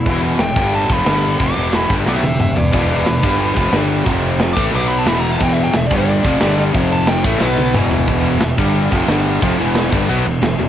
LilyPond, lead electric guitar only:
\new Staff \with { instrumentName = "Lead electric guitar" } { \time 4/4 \key e \phrygian \tempo 4 = 180 e'8 r8 g''4 a''8 b''4. | d'''4 b''8 r8 <g' e''>8 <g' e''>8 <g' e''>8 <b' d''>8 | <b' d''>8 <b' d''>8 <d' b'>8 <d' b'>8 <d' b'>8 b'8 r4 | r4 \tuplet 3/2 { r8 d'''8 r8 d'''8 b''8 a''8 b''8 ais''8 a''8 } |
\tuplet 3/2 { g''8 e''8 g''8 e''8 d''8 d''8~ } d''4. r8 | r8 a''8 g''8 e''8 b'4 r4 | r1 | r1 | }